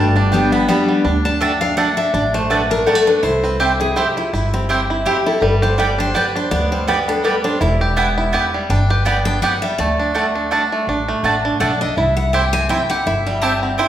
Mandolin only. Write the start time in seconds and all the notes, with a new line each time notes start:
Already playing: A5
0.16 D5
0.32 G5
0.52 B5
0.69 B5
1.41 A3 F#4 D5 A5
1.77 A3 F#4 D5 A5
2.50 A3 F#4 D5 A5
2.86 A3 F#4 D5 A5
3.60 C4 E4 C5 G5
3.96 C4 E4 C5 G5
4.69 C4 E4 C5 G5
5.05 C4 E4 C5 G5
5.78 B3 G4 D5 G5
6.14 B3 G4 D5 G5
6.87 B3 G4 D5 G5
7.24 B3 G4 D5 G5
7.96 B3 E4 B4 G5
8.33 B3 E4 B4 G5
9.05 B3 G4 D5 G5
9.42 B3 G4 D5 G5
10.14 A3 F#4 D5 A5
10.51 A3 F#4 D5 A5
11.24 A3 F#4 D5 A5
11.60 A3 F#4 D5 A5
12.33 C4 E4 C5 G5
12.69 C4 E4 C5 G5
13.42 C4 E4 C5 G5
13.78 C4 E4 C5 G5